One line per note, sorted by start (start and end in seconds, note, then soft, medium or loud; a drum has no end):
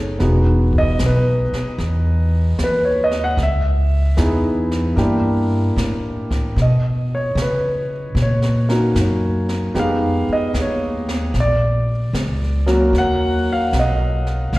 0.00 0.20 A3 soft
0.00 0.21 C#4 soft
0.00 0.20 D#4 soft
0.00 0.21 G#4 medium
0.19 0.97 E1 medium
0.19 1.41 B3 soft
0.19 1.42 D#4 soft
0.19 1.42 F#4 soft
0.19 1.42 G#4 soft
0.19 brush sweep soft
0.19 snare soft
0.73 kick soft
0.78 1.01 D#5 medium
0.99 1.49 B1 medium
0.99 snare soft
0.99 hi-hat pedal soft
1.06 1.78 B4 medium
1.53 muted upright bass stroke soft
1.53 snare soft
1.78 2.55 E2 medium
1.78 brush sweep soft
1.78 snare soft
2.59 3.35 D#2 medium
2.59 snare soft
2.59 hi-hat pedal soft
2.64 2.87 B4 medium
2.85 3.10 C#5 medium
3.04 3.20 D#5 medium
3.11 snare soft
3.24 3.37 F#5 medium
3.37 4.14 C#2 medium
3.37 brush sweep soft
3.37 snare soft
3.43 3.73 E5 medium
4.17 4.94 E2 medium
4.17 4.94 B3 medium
4.17 4.95 D#4 soft
4.17 4.95 E4 medium
4.17 4.95 G#4 medium
4.17 snare soft
4.17 hi-hat pedal soft
4.71 snare soft
4.96 5.74 G2 medium
4.96 5.45 A#3 medium
4.96 5.45 D4 soft
4.96 5.46 E4 medium
4.96 5.46 G4 medium
4.96 brush sweep soft
4.96 snare soft
5.76 6.54 A2 medium
5.76 snare soft
5.76 hi-hat pedal soft
6.31 kick soft
6.31 snare soft
6.56 7.34 B2 medium
6.56 brush sweep soft
6.56 snare soft
6.62 7.11 D#5 medium
7.15 7.38 C#5 medium
7.35 8.13 C#3 medium
7.35 snare soft
7.35 hi-hat pedal soft
7.42 8.15 B4 medium
8.15 8.93 A#2 medium
8.15 brush sweep soft
8.15 snare soft
8.22 8.71 C#5 medium
8.42 snare soft
8.69 8.93 A#3 soft
8.69 8.93 C#4 soft
8.69 8.93 D#4 soft
8.69 8.93 F#4 medium
8.69 snare soft
8.95 9.72 F#2 medium
8.95 snare soft
8.95 hi-hat pedal soft
9.49 snare soft
9.74 10.25 F2 medium
9.74 10.23 G#3 medium
9.74 10.23 B3 soft
9.74 10.23 D#4 soft
9.74 10.24 G4 medium
9.74 brush sweep soft
9.74 snare soft
9.79 10.29 F5 medium
10.29 muted upright bass stroke soft
10.33 10.56 D#5 medium
10.54 11.31 D#2 medium
10.54 snare medium
10.54 hi-hat pedal soft
10.61 11.33 C#5 medium
11.09 snare soft
11.34 12.11 A#1 medium
11.34 brush sweep soft
11.34 snare soft
11.40 11.89 D5 medium
12.13 12.91 C#2 medium
12.13 snare soft
12.13 hi-hat pedal soft
12.66 13.67 F#3 medium
12.66 13.67 A#3 soft
12.66 13.68 C#4 soft
12.66 13.68 F#4 medium
12.66 snare soft
12.93 13.70 D#2 medium
12.93 brush sweep soft
12.93 snare soft
12.98 13.48 F#5 medium
13.53 13.75 F5 medium
13.73 14.50 B1 medium
13.73 snare soft
13.73 hi-hat pedal soft
13.79 14.52 D#5 medium
14.27 snare soft
14.53 14.59 C#2 medium
14.53 brush sweep soft
14.53 snare soft